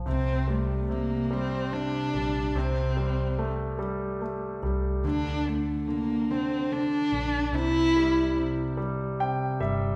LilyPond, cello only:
\new Staff \with { instrumentName = "Cello" } { \time 6/8 \key c \mixolydian \tempo 4. = 48 c'8 a8 bes8 c'8 d'4 | c'4 r2 | d'8 a8 bes8 c'8 d'4 | e'4 r2 | }